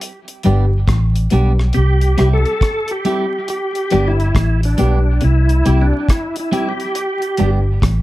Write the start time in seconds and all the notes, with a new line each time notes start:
0.01 closed hi-hat
0.28 closed hi-hat
0.43 G1 G2 G3 B3 D4 G4, closed hi-hat
0.88 A1 A2, kick, cross-stick, closed hi-hat
1.16 closed hi-hat
1.30 B1 B2 G3 B3 D4 G4, closed hi-hat
1.59 cross-stick
1.73 C3 G4, closed hi-hat
1.77 C2
2.01 closed hi-hat
2.18 C2 C3 G3 C4 E4 G4, cross-stick, closed hi-hat
2.33 A4
2.46 closed hi-hat
2.61 kick, cross-stick, closed hi-hat
2.88 G4, closed hi-hat
3.05 G3 C4 E4 G4, closed hi-hat
3.48 G4, closed hi-hat
3.75 closed hi-hat
3.90 G1 G2 G3 B3 D4 G4, closed hi-hat
4.08 E4
4.20 closed hi-hat
4.35 A1 A2, kick, cross-stick, closed hi-hat
4.63 D4, closed hi-hat
4.78 B1 B2 G3 B3 D4 G4, closed hi-hat
5.21 C2 C3 E4, closed hi-hat
5.49 closed hi-hat
5.65 C2 C3 G3 C4 E4 G4, closed hi-hat
5.82 D4
5.93 muted clean electric guitar stroke
6.09 E4, kick, cross-stick, closed hi-hat
6.36 E4, closed hi-hat
6.52 G3 C4 E4 G4, closed hi-hat
6.69 G4
6.80 closed hi-hat
6.95 closed hi-hat
7.22 closed hi-hat
7.37 G1 G2 G3 B3 D4 G4, closed hi-hat
7.82 A1 A2, kick, cross-stick, closed hi-hat